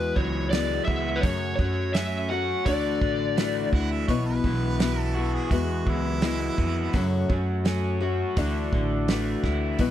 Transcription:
Already playing: E2 E3 G#3 B3 E4 F#4 B4
0.16 C#2 F#3 C#5, kick
0.50 G#3 B3 E4 D5, snare, open hi-hat
0.55 F#4
0.85 C#2 B3 E5, kick
1.16 B4
1.21 F#2 C#3 F#3 A3 C#4 C#5, kick, open hi-hat
1.25 A3 C#4 F#4
1.56 F#2 F#4 C#5, kick
1.60 F#3 A3 C#4
1.94 F#3 A3 C#4 F#4 E5, snare, open hi-hat
2.30 F#3 A3 C#4 F#4 F#5
2.66 D2 D3 E3 A3 D4 E4 F#4 D5, kick, open hi-hat
3.02 A1 D3, kick
3.38 E3 A3 D4 F#4, snare, open hi-hat
3.73 D2 E4 F#5, kick
3.91 E5
4.07 B1 B2 E3 B3 E4 F#4 C#5, kick, open hi-hat
4.25 B4
4.44 B1 E3 B3 E4 F#4, kick
4.80 E3 B3 E4 F#4, snare, open hi-hat
5.01 A4
5.16 B3 E4 F#4
5.34 G#4
5.50 E2 E3 G#3 B3 E4 F#4, kick, open hi-hat
5.87 C#2 F#3 E4, kick
6.22 G#3 B3 E4 F#4, snare, open hi-hat
6.58 F2 B3, kick
6.93 F#2 C#3 F#3 A3 C#4 F#4, kick, open hi-hat
7.30 F#2 F#3 A3 C#4 F#4, kick
7.65 F#3 A3 C#4 F#4, snare, open hi-hat
8.01 F#3 A3 C#4 F#4
8.37 D2 D3 E3 A3 D4 E4 F#4, kick, open hi-hat
8.73 A1 D3, kick
9.08 E3 A3 D4 F#4, snare, open hi-hat
9.44 D2 E4, kick, snare
9.79 B1 B2 E3 B3 E4 F#4, kick, open hi-hat

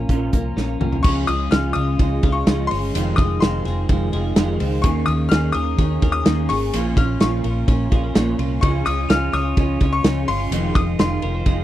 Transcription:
Already playing: A#2 A#3 C#4 F5
0.09 A#1 A#2 F3 C#4 F4 A#4, kick, closed hi-hat
0.33 C2 A#3 C#4 F4 A#4, kick, closed hi-hat
0.56 A#1 F3 C#4 F4 A#4, snare
0.80 C2 A#3 C#4 F4 A#4, mid tom
0.93 floor tom
1.03 C#2 C#3 F3 G#3 C#4 F4 C#6, kick, crash
1.27 C#2 G#3 C#4 F4 D#6, ride
1.51 C#2 C#3 F3 G#3 C#4 F4 F6, snare, ride
1.73 C#2 C#4 F4 D#6, ride
1.78 G#3
1.99 C#2 F3 G#3 C#4 F4, kick, ride
2.23 C#2 G#3 C#4 F4, kick, ride
2.32 C#6
2.47 C#2 C#3 F3 G#3 C#4 F4, snare, ride
2.67 F4 C6, open hi-hat, ride
2.71 G1 G#3 C#4
2.94 F1 F2 C3 D#3 G#3 C4 F4, hi-hat pedal, ride
3.16 F1 G#3 C4 F4 D#6, kick, ride
3.21 D#3
3.40 F1 F2 C3 D#3 G#3 C4 F4 C6, snare, ride
3.65 F1 D#3 G#3 C4 F4 G#4, snare, ride
3.89 F1 D#3 G#3 C4 F4, kick, ride
4.13 F1 D#3 G#3 C4 F4 G#4, ride
4.36 F1 F2 C3 D#3 G#3 C4 F4, snare, ride
4.59 C#2 D#3 G#3 C4 F4, open hi-hat, ride
4.82 D#2 D#3 A#3 C#4 G#4 C#6, kick, hi-hat pedal, ride
5.06 D#2 C#4 G#4 D#6, ride
5.10 A#3
5.29 D#2 D#3 A#3 C#4 G#4 F6, snare, ride
5.52 D#2 C#4 G#4 A#4 D#6, ride
5.57 A#3
5.78 D#2 D#3 A#3 C#4 G#4, kick, ride
6.01 D#2 A#3 C#4 G#4 A#4, kick, ride
6.12 D#6
6.25 D#2 D#3 A#3 C#4 G#4, snare, ride
6.49 G#1 A#3 C#4 G#4 C#6, open hi-hat, ride
6.73 A#1 A#2 F3 A#3 C#4 F4, hi-hat pedal, ride
6.97 A#1 A#3 C#4 F4 F6, kick, ride
7.20 A#1 A#2 F3 A#3 C#4 F4 C#6, snare, ride
7.44 A#1 A#3 C#4 F4 A#4, ride
7.66 A#1 F3 A#3 C#4 F4, kick, ride
7.90 A#1 A#3 C#4 F4 G#4, kick, ride
8.04 A#4
8.14 A#1 A#2 F3 A#3 C#4 F4, snare, ride
8.38 C2 A#3 C#4 F4, ride
8.61 C#2 C#3 F3 G#3 C#4 F4 C#6 C#7, kick, ride
8.84 C#2 G#3 C#4 F4 D#6 D#7, ride
9.09 C#2 C#3 F3 G#3 C#4 F4 F6 F7, snare, ride
9.32 C#2 G#3 C#4 F4 C#5 D#6 D#7, snare, ride
9.56 C#2 F3 G#3 C#4 F4, kick, ride
9.80 C#2 G#3 C#4 F4 C#5, kick, ride
9.93 C#6 C#7
10.04 C#2 C#3 F3 G#3 C#4 F4, snare, ride
10.27 G1 G#3 C#4 F4 C6 C7, open hi-hat, ride
10.51 F1 F2 C3 D#3 F3 G#3 C4 F4, hi-hat pedal, ride
10.75 F1 D#3 G#3 C4 D#4 F4 D#6 D#7, kick, ride
10.98 F1 F2 C3 D#3 G#3 C4 F4 C6 C7, snare, ride
11.22 F1 D#3 G#3 C4 F4 A#4, ride
11.35 C5
11.46 F1 D#3 G#3 C4 D#4 F4, kick, ride

